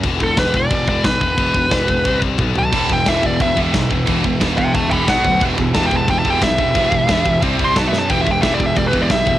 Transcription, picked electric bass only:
X:1
M:4/4
L:1/8
Q:1/4=179
K:Em
V:1 name="Picked electric bass" clef=bass
E,,, E,,, E,,, E,,, E,,, E,,, B,,, E,,, | E,,, E,,, E,,, E,,, C,,2 B,,, B,,, | E,,, E,,, E,,, E,,, E,,, E,,, B,,, E,,, | E,,, E,,, E,,, E,,, E,,,2 B,,, D,, |
E,,, E,,, E,,, E,,, E,,, E,,, B,,, E,,, | E,,, E,,, E,,, E,,, C,,2 B,,, F,, | E,,, E,,, E,,, E,,, E,,, E,,, B,,, E,,, |]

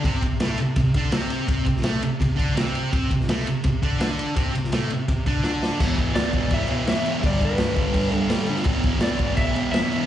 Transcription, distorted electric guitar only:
X:1
M:4/4
L:1/8
Q:1/4=167
K:Ador
V:1 name="Distorted electric guitar" clef=bass
[C,C] C, [A,,A,] C, C, [D,D] [C,C]2 | [C,C] C, [A,,A,] C, C, [D,D] [C,C]2 | [C,C] C, [A,,A,] C, C, [D,D] [D,D]2 | [C,C] C, [A,,A,] C, C, [D,D] [D,D]2 |
[E,,B,,E,] [B,,E,] [E,,B,,E,] [B,,E,] [E,,B,,E,] [E,,B,,E,] [E,,B,,E,] [B,,E,] | [G,,D,G,] [D,G,] [G,,D,G,] [D,G,] [G,,D,G,] [G,,D,G,] [G,,D,G,] [D,G,] | [E,,B,,E,] [B,,E,] [E,,B,,E,] [B,,E,] [E,,B,,E,] [E,,B,,E,] [E,,B,,E,] [B,,E,] |]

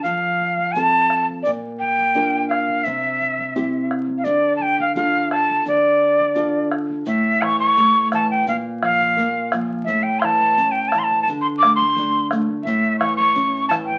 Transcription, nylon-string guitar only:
X:1
M:2/4
L:1/8
Q:1/4=86
K:Dm
V:1 name="Nylon-string guitar"
F,2 [CFA]2 | B,,2 [DFB]2 | C,2 [CEG]2 | D,2 [DFA]2 |
D,2 [DFA]2 | A,, E, A, E, | B,, F, B, F, | A,, E, ^C E, |
D, A, D A, | A,, E, ^C E, |]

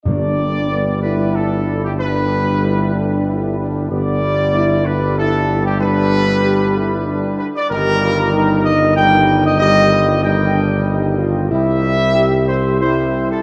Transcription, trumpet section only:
X:1
M:3/4
L:1/16
Q:1/4=94
K:G
V:1 name="Trumpet section"
d6 B2 A3 G | B8- B2 z2 | d6 B2 A3 G | B8- B2 B d |
_B6 _e2 g3 e | _e4 g6 z2 | e6 c2 c3 A |]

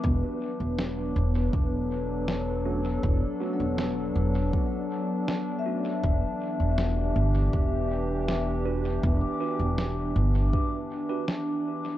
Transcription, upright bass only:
X:1
M:4/4
L:1/16
Q:1/4=80
K:Em
V:1 name="Upright bass" clef=bass
E,,, z2 E,,,3 E,,,2 E,,,8 | E,,, z2 E,,,3 E,,,2 z8 | E,,, z2 E,,,3 G,,,2 E,,,8 | E,,, z2 E,,,3 G,,,2 z8 |]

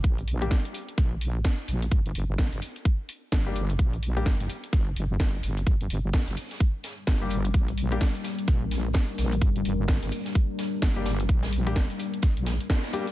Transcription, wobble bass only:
X:1
M:4/4
L:1/16
Q:"Swing 16ths" 1/4=128
K:Gm
V:1 name="Wobble bass" clef=bass
B,,,4 z4 B,,,4 z2 B,,,2 | G,,,2 G,,,3 G,,, z6 G,,,4 | B,,,4 G,,,2 z2 G,,,2 G,,,2 G,,,2 G,,,2 | G,,,2 G,,,3 G,,, z6 G,,,4 |
B,,,4 z4 B,,,4 z2 B,,,2 | G,,,2 G,,,3 G,,, z6 G,,,4 | B,,,4 F,,, z4 B,,,2 z4 z |]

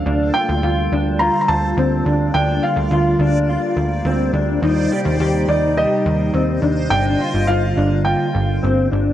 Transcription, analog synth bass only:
X:1
M:4/4
L:1/16
Q:1/4=105
K:Gm
V:1 name="Analog synth bass" clef=bass
D,,2 z D,, D,,2 D,,3 z D,,2 D,,2 D,,2 | D,,2 z D,, D,,2 D,,3 z D,,2 D,,2 D,,2 | E,,2 z E,, E,,2 E,,3 z E,,2 E,,2 E,,2 | G,,,2 z G,,, G,,,2 G,,,3 z G,,,2 G,,,2 G,,,2 |]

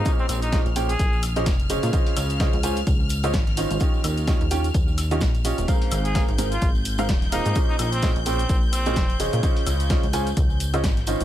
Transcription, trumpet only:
X:1
M:4/4
L:1/16
Q:"Swing 16ths" 1/4=128
K:Bbdor
V:1 name="Trumpet"
z C C E2 z2 A3 z6 | z16 | z16 | z3 A2 z2 F2 z4 z E2 |
z E E C2 z C3 z C4 z2 | z16 |]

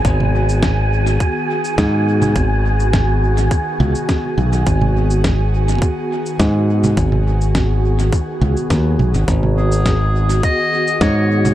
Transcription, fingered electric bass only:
X:1
M:4/4
L:1/16
Q:1/4=104
K:G#m
V:1 name="Fingered electric bass" clef=bass
G,,,8 z4 G,,4 | G,,,8 z2 C,, z3 B,,,2 | G,,,8 z4 G,,4 | G,,,8 z2 C,, z D,,2 B,,, G,,, |
G,,,8 z4 G,,4 |]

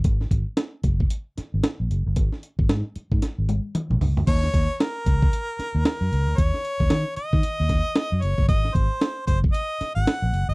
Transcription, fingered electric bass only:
X:1
M:4/4
L:1/16
Q:"Swing 16ths" 1/4=114
K:Ebdor
V:1 name="Fingered electric bass" clef=bass
A,,,2 A,,, z3 G,,,2 z3 A,,, z B,,, G,,, =G,,, | A,,, z2 A,,, A,, z2 A,, z A,,,2 z2 B,,, D,, =D,, | E,,2 E,, z3 D,,2 z3 E,, z G,, D,, =D,, | E,, z2 E,, E, z2 E, z E,,2 z2 G,, G,,, =G,,, |
A,,,2 A,,, z3 G,,,2 z3 A,,, z B,,, G,,, =G,,, |]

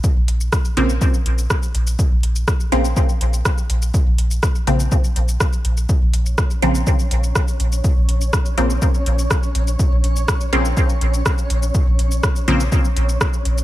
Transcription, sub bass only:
X:1
M:4/4
L:1/16
Q:1/4=123
K:Bbm
V:1 name="Sub bass" clef=bass
z B,,, B,,,2 z2 B,,,2 z2 B,,,2 z2 B,,,2 | z B,,, B,,,2 z2 B,,,2 z2 B,,,2 z2 B,,,2 | z B,,, B,,,2 z2 B,,,2 z2 B,,,2 z2 B,,,2 | z B,,, B,,,2 z2 B,,,2 z2 B,,,2 z2 B,,,2 |
z B,,, B,,,2 z2 B,,,2 z2 B,,,2 z2 B,,,2 | z B,,, B,,,2 z2 B,,,2 z2 B,,,2 z2 B,,,2 | z B,,, B,,,2 z2 B,,,2 z2 B,,,2 z2 B,,,2 |]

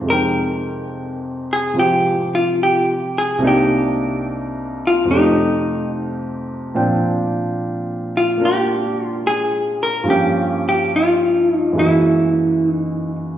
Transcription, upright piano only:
X:1
M:4/4
L:1/8
Q:"Swing" 1/4=72
K:Fm
V:1 name="Upright piano"
[F,,C,A,Eg]4 [C,F,CF]4 | [C,,C,B,=DE]4 [F,,C,=A,EG]4 | [B,,F,C=Dg]4 [B,DFB]4 | [G,,F,B,DG]4 [_G,,_F,A,B,_G]4 |]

